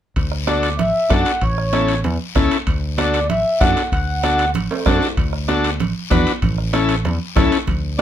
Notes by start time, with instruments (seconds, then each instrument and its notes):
0.16 fingered electric bass D2, bombo low, high conga, high timbale, long guiro
0.32 bombo rim
0.47 transistor combo organ D4 F#4 A4, accordion D5, bombo rim, high conga, high timbale, short guiro
0.63 high timbale, short guiro
0.78 fingered electric bass A1, accordion E5, high conga, low conga, high timbale, long guiro
1.09 fingered electric bass F#2, transistor combo organ D4 F#4 A4, accordion F#5, bombo low, bombo rim, high conga, high timbale, low timbale, short guiro
1.25 high timbale, short guiro
1.41 fingered electric bass A1, accordion C#5, bombo low, high conga, high timbale, long guiro
1.58 bombo rim
1.73 transistor combo organ C#4 E4 A4, bombo rim, high conga, high timbale, short guiro
1.88 high timbale, short guiro
2.04 fingered electric bass E2, high conga, low conga, high timbale, long guiro
2.35 fingered electric bass C#2, transistor combo organ C#4 E4 A4, bombo low, bombo rim, high conga, high timbale, short guiro
2.51 high timbale, short guiro
2.67 fingered electric bass D2, bombo low, high conga, high timbale, long guiro
2.98 transistor combo organ D4 F#4 A4, accordion D5, bombo rim, high conga, high timbale, short guiro
3.14 high timbale, short guiro
3.30 fingered electric bass A1, accordion E5, high conga, low conga, high timbale, long guiro
3.60 fingered electric bass F#2, transistor combo organ D4 F#4 A4, accordion F#5, bombo low, bombo rim, high conga, high timbale, low timbale, short guiro
3.76 high timbale, short guiro
3.92 fingered electric bass D2, accordion F#5, bombo low, high conga, high timbale, long guiro
4.23 transistor combo organ D4 F#4 A4, bombo rim, high conga, high timbale, short guiro
4.38 high timbale, short guiro
4.54 fingered electric bass A1, high conga, low conga, high timbale, long guiro
4.71 high timbale
4.86 fingered electric bass F#2, transistor combo organ D4 F#4 A4, bombo low, bombo rim, high conga, high timbale, short guiro
5.02 low timbale, short guiro
5.17 fingered electric bass D2, bombo low, high conga, high timbale, long guiro
5.33 bombo rim
5.48 transistor combo organ D4 F#4 A4, bombo rim, high conga, high timbale, short guiro
5.64 high timbale, short guiro
5.80 fingered electric bass A1, high conga, low conga, high timbale, long guiro
6.10 fingered electric bass E2, transistor combo organ D4 F#4 B4, bombo low, bombo rim, high conga, low conga, high timbale, low timbale, short guiro
6.27 high timbale, short guiro
6.42 fingered electric bass A1, bombo low, high conga, low conga, high timbale, long guiro
6.58 bombo rim
6.73 transistor combo organ C#4 E4 A4, bombo rim, high conga, high timbale, short guiro
6.89 high timbale, short guiro
7.05 fingered electric bass E2, high conga, low conga, high timbale, long guiro
7.36 fingered electric bass C#2, transistor combo organ C#4 E4 A4, bombo low, bombo rim, high conga, low conga, high timbale, low timbale, short guiro
7.52 high timbale, short guiro
7.67 fingered electric bass D2, bombo low, high conga, low conga, high timbale, long guiro
7.98 transistor combo organ D4 F#4